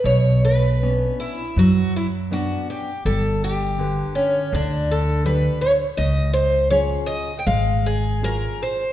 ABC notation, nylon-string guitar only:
X:1
M:4/4
L:1/8
Q:1/4=81
K:Bm
V:1 name="Nylon-string guitar"
B,,2 [B,CD]2 F,2 [B,CD]2 | G,2 [D,GB]2 D,2 [DGB]2 | C,2 [C^E^G]2 ^G,2 [CEG]2 |]